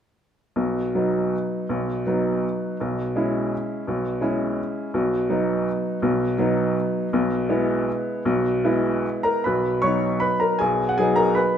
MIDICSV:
0, 0, Header, 1, 2, 480
1, 0, Start_track
1, 0, Key_signature, 5, "major"
1, 0, Tempo, 374298
1, 727, Time_signature, 3, 2, 24, 8
1, 3128, Tempo, 356930
1, 6968, Tempo, 364299
1, 9848, Tempo, 393443
1, 12248, Tempo, 383142
1, 14917, End_track
2, 0, Start_track
2, 0, Title_t, "Upright piano"
2, 0, Program_c, 0, 0
2, 718, Note_on_c, 0, 35, 37
2, 718, Note_on_c, 0, 47, 34
2, 978, Control_c, 0, 64, 127
2, 1196, Note_off_c, 0, 35, 0
2, 1196, Note_off_c, 0, 47, 0
2, 1218, Note_on_c, 0, 54, 32
2, 1223, Note_on_c, 0, 59, 32
2, 1225, Note_on_c, 0, 63, 35
2, 1724, Control_c, 0, 64, 0
2, 2127, Note_off_c, 0, 54, 0
2, 2129, Note_off_c, 0, 59, 0
2, 2130, Note_off_c, 0, 63, 0
2, 2172, Note_on_c, 0, 35, 42
2, 2175, Note_on_c, 0, 47, 34
2, 2403, Control_c, 0, 64, 127
2, 2623, Note_off_c, 0, 35, 0
2, 2625, Note_off_c, 0, 47, 0
2, 2651, Note_on_c, 0, 59, 30
2, 2652, Note_on_c, 0, 54, 34
2, 2663, Note_on_c, 0, 63, 35
2, 3142, Control_c, 0, 64, 0
2, 3562, Note_off_c, 0, 59, 0
2, 3563, Note_off_c, 0, 54, 0
2, 3568, Note_off_c, 0, 63, 0
2, 3618, Note_on_c, 0, 47, 35
2, 3622, Note_on_c, 0, 35, 39
2, 3835, Control_c, 0, 64, 127
2, 4078, Note_off_c, 0, 47, 0
2, 4080, Note_off_c, 0, 35, 0
2, 4094, Note_on_c, 0, 56, 37
2, 4104, Note_on_c, 0, 61, 35
2, 4106, Note_on_c, 0, 64, 38
2, 4601, Control_c, 0, 64, 0
2, 5008, Note_off_c, 0, 56, 0
2, 5013, Note_off_c, 0, 61, 0
2, 5014, Note_off_c, 0, 64, 0
2, 5058, Note_on_c, 0, 47, 40
2, 5067, Note_on_c, 0, 35, 42
2, 5268, Control_c, 0, 64, 127
2, 5505, Note_off_c, 0, 47, 0
2, 5509, Note_off_c, 0, 35, 0
2, 5510, Note_on_c, 0, 56, 37
2, 5522, Note_on_c, 0, 61, 36
2, 5522, Note_on_c, 0, 64, 39
2, 6023, Control_c, 0, 64, 0
2, 6436, Note_off_c, 0, 56, 0
2, 6442, Note_off_c, 0, 61, 0
2, 6442, Note_off_c, 0, 64, 0
2, 6492, Note_on_c, 0, 35, 49
2, 6494, Note_on_c, 0, 47, 45
2, 6724, Control_c, 0, 64, 127
2, 6952, Note_off_c, 0, 35, 0
2, 6952, Note_off_c, 0, 47, 0
2, 6970, Note_on_c, 0, 54, 38
2, 6974, Note_on_c, 0, 59, 39
2, 6980, Note_on_c, 0, 63, 47
2, 7472, Control_c, 0, 64, 0
2, 7882, Note_off_c, 0, 54, 0
2, 7885, Note_off_c, 0, 59, 0
2, 7888, Note_off_c, 0, 63, 0
2, 7928, Note_on_c, 0, 35, 53
2, 7934, Note_on_c, 0, 47, 48
2, 8195, Control_c, 0, 64, 127
2, 8376, Note_off_c, 0, 35, 0
2, 8379, Note_off_c, 0, 47, 0
2, 8404, Note_on_c, 0, 54, 40
2, 8417, Note_on_c, 0, 59, 43
2, 8417, Note_on_c, 0, 63, 48
2, 8897, Control_c, 0, 64, 0
2, 9318, Note_off_c, 0, 54, 0
2, 9325, Note_off_c, 0, 59, 0
2, 9325, Note_off_c, 0, 63, 0
2, 9388, Note_on_c, 0, 47, 51
2, 9389, Note_on_c, 0, 35, 53
2, 9585, Control_c, 0, 64, 127
2, 9845, Note_off_c, 0, 35, 0
2, 9845, Note_off_c, 0, 47, 0
2, 9862, Note_on_c, 0, 56, 37
2, 9868, Note_on_c, 0, 59, 46
2, 9869, Note_on_c, 0, 64, 42
2, 10336, Control_c, 0, 64, 0
2, 10748, Note_off_c, 0, 56, 0
2, 10752, Note_off_c, 0, 59, 0
2, 10752, Note_off_c, 0, 64, 0
2, 10792, Note_on_c, 0, 35, 54
2, 10795, Note_on_c, 0, 47, 45
2, 11011, Control_c, 0, 64, 127
2, 11249, Note_off_c, 0, 35, 0
2, 11251, Note_off_c, 0, 47, 0
2, 11265, Note_on_c, 0, 59, 36
2, 11266, Note_on_c, 0, 56, 34
2, 11272, Note_on_c, 0, 64, 47
2, 11768, Control_c, 0, 64, 0
2, 11987, Note_on_c, 0, 82, 58
2, 12002, Note_on_c, 0, 70, 41
2, 12200, Note_off_c, 0, 56, 0
2, 12200, Note_off_c, 0, 59, 0
2, 12203, Note_off_c, 0, 64, 0
2, 12229, Note_off_c, 0, 70, 0
2, 12239, Note_off_c, 0, 82, 0
2, 12240, Note_on_c, 0, 83, 43
2, 12254, Note_on_c, 0, 71, 39
2, 12261, Note_on_c, 0, 35, 41
2, 12268, Note_on_c, 0, 47, 37
2, 12471, Control_c, 0, 64, 127
2, 12693, Note_off_c, 0, 71, 0
2, 12711, Note_on_c, 0, 85, 62
2, 12715, Note_off_c, 0, 35, 0
2, 12719, Note_off_c, 0, 47, 0
2, 12719, Note_off_c, 0, 83, 0
2, 12724, Note_on_c, 0, 73, 49
2, 12735, Note_on_c, 0, 54, 28
2, 12742, Note_on_c, 0, 59, 33
2, 12751, Note_on_c, 0, 63, 31
2, 13172, Note_off_c, 0, 73, 0
2, 13190, Note_on_c, 0, 83, 61
2, 13199, Note_off_c, 0, 85, 0
2, 13202, Note_on_c, 0, 71, 41
2, 13221, Control_c, 0, 64, 0
2, 13438, Note_off_c, 0, 71, 0
2, 13438, Note_on_c, 0, 82, 51
2, 13450, Note_off_c, 0, 83, 0
2, 13457, Note_on_c, 0, 70, 44
2, 13658, Note_off_c, 0, 54, 0
2, 13662, Note_off_c, 0, 59, 0
2, 13666, Note_off_c, 0, 63, 0
2, 13675, Note_on_c, 0, 80, 61
2, 13685, Note_off_c, 0, 70, 0
2, 13692, Note_off_c, 0, 82, 0
2, 13694, Note_on_c, 0, 68, 37
2, 13705, Note_on_c, 0, 35, 44
2, 13708, Note_on_c, 0, 47, 38
2, 13938, Control_c, 0, 64, 127
2, 14025, Note_off_c, 0, 68, 0
2, 14040, Note_off_c, 0, 80, 0
2, 14053, Note_on_c, 0, 78, 56
2, 14161, Note_off_c, 0, 35, 0
2, 14163, Note_off_c, 0, 47, 0
2, 14163, Note_on_c, 0, 80, 57
2, 14174, Note_off_c, 0, 78, 0
2, 14177, Note_on_c, 0, 68, 46
2, 14187, Note_on_c, 0, 54, 32
2, 14194, Note_on_c, 0, 59, 33
2, 14197, Note_on_c, 0, 63, 35
2, 14390, Note_on_c, 0, 82, 63
2, 14402, Note_off_c, 0, 68, 0
2, 14410, Note_on_c, 0, 70, 46
2, 14412, Note_off_c, 0, 80, 0
2, 14629, Note_on_c, 0, 83, 51
2, 14636, Note_off_c, 0, 70, 0
2, 14643, Note_off_c, 0, 82, 0
2, 14645, Note_on_c, 0, 71, 42
2, 14674, Control_c, 0, 64, 0
2, 14917, Note_off_c, 0, 54, 0
2, 14917, Note_off_c, 0, 59, 0
2, 14917, Note_off_c, 0, 63, 0
2, 14917, Note_off_c, 0, 71, 0
2, 14917, Note_off_c, 0, 83, 0
2, 14917, End_track
0, 0, End_of_file